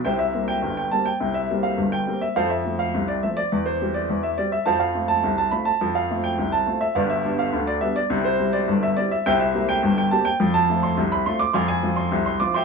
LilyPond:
<<
  \new Staff \with { instrumentName = "Grand piano" } { \time 2/4 \key c \major \tempo 4 = 104 <c'' e'' g''>16 e''8 g''8 g''16 a''16 g''16~ | g''16 e''8 f''8 g''8 e''16 | <a' c'' f''>16 e''8 f''8 d''16 e''16 d''16~ | d''16 c''8 d''8 e''16 d''16 e''16 |
<c'' f'' a''>16 f''8 a''8 a''16 b''16 a''16~ | a''16 f''8 g''8 a''8 e''16 | <b' d'' f''>16 e''8 f''8 d''16 e''16 d''16~ | d''16 c''8 d''8 e''16 d''16 e''16 |
<c'' e'' g''>16 e''8 g''8 g''16 a''16 g''16~ | g''16 a''8 c'''8 b''16 c'''16 d'''16 | <f'' aes'' c'''>16 aes''8 c'''8 c'''16 d'''16 <e'' g'' c'''>16 | }
  \new Staff \with { instrumentName = "Grand piano" } { \clef bass \time 2/4 \key c \major <c, c>8 <g bes c'>8 <g,, g,>8 <g bes c'>8 | <c, c>8 <g bes c'>8 <g,, g,>8 <g bes c'>8 | <f, f>8 <f a c'>8 <c, c>8 <f a c'>8 | <e, e>8 <g c' g'>8 <e, e>8 <g c' g'>8 |
<f, f>8 <a c' f'>8 <c, c>8 <a c' f'>8 | <f, f>8 <a c' f'>8 <c, c>8 <a c' f'>8 | <g,, g,>8 <g b d'>8 <d, d>8 <g b d'>8 | <c, c>8 <g c' e'>8 <g,, g,>8 <g c' e'>8 |
<c, c>8 <bes c' g'>8 <g,, g,>8 <bes c' g'>8 | <f, f>8 <a c' f'>8 <c, c>8 <a c' f'>8 | <f, f>8 <f c' f'>8 <c, c>8 <f c' f'>8 | }
>>